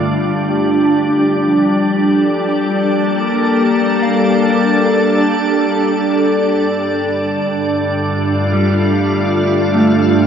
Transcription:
Already playing: G3 D4 F4
0.25 A3
0.84 A5
1.47 F3
1.52 A4
2.48 G5
2.67 A#3
4.02 F5
5.75 A4
6.21 G2
6.73 D3
7.15 A3
7.86 F4
8.53 G3
9.74 A3

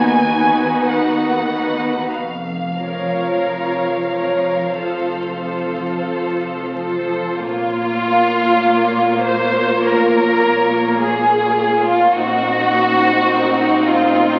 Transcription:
Already playing: D#2 B3 D#4 F#4 B4 G#5
0.25 F#4 B4
0.30 B3 D#4
0.89 D#2 F#5
1.48 B3 D#4 F#4 B4
2.14 F1 F2 F5
2.78 F3 F4 A#4 C#5
3.45 F1 F2
4.09 F3 F4 A#4 C#5
4.74 F1 F2 F3 F4 A4 C5
5.41 F3 F4 A4 C5
6.06 F1 F2
6.73 F3 F4 A4 C5
7.37 A#1 A#2 A#3 F4 C#5
9.24 C5
9.84 A#4
11.01 G#4
11.86 F4
12.14 A#1 A#2 C4 D#4 F#4 D#5
13.88 F4

